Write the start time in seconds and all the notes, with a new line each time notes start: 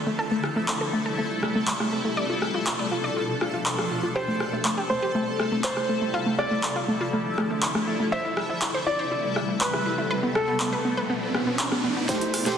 Already playing: D3 F3 A3 E4 A4
0.07 A3
0.19 C3 G3 E4 A4
0.31 A3
0.44 cross-stick
0.56 A3
0.68 A3, clap
0.81 A4
0.93 A3
1.06 A4
1.18 A3
1.43 A3, cross-stick
1.55 A3
1.67 clap
1.80 A3, cross-stick
1.93 A3
2.05 A3
2.17 B2 F3 D4 D5
2.30 F4
2.42 cross-stick
2.54 F4
2.66 F4, clap
2.79 D5
2.92 F4
3.04 D5
3.16 F4
3.41 F4, cross-stick
3.54 F4
3.66 clap
3.78 F4, cross-stick
3.91 F4
4.03 F4
4.15 C3 G3 E4 G4 C5
4.28 A3
4.40 cross-stick
4.53 A3
4.65 A3, clap
4.78 G4
4.90 A3 C5
5.02 G4
5.15 A3
5.40 A3, cross-stick
5.52 A3
5.64 C5, clap
5.77 A3, cross-stick
5.89 A3
6.02 A3
6.14 D3 F3 F4
6.26 A3
6.38 D5, cross-stick
6.51 A3
6.63 A3, clap
6.76 F4
6.88 A3
7.01 F4
7.13 A3
7.38 A3, cross-stick
7.50 A3
7.62 clap
7.75 A3, cross-stick
7.87 A3
8.00 A3
8.12 C3 G3 A3 C5 E5, riser
8.25 E4
8.37 cross-stick
8.50 E4
8.61 E4, clap
8.74 C5
8.87 E4 D5
8.99 C5
9.11 E4
9.36 E4, cross-stick
9.49 E4
9.61 B4, clap
9.73 E4, cross-stick
9.86 E4
9.98 E4
10.10 B2 F3 D4 B4
10.23 B3
10.35 A4, cross-stick
10.48 B3
10.60 B3, clap
10.73 B4
10.85 B3
10.97 B4
11.10 B3
11.35 B3, cross-stick
11.47 B3
11.59 clap
11.72 B3, cross-stick
11.84 B3
11.96 B3
12.09 C3 G3 A3 E4 G4 A4 C5, kick, snare, closed hi-hat
12.21 A3, closed hi-hat
12.34 cross-stick, open hi-hat
12.46 A3 G4 C5, snare, closed hi-hat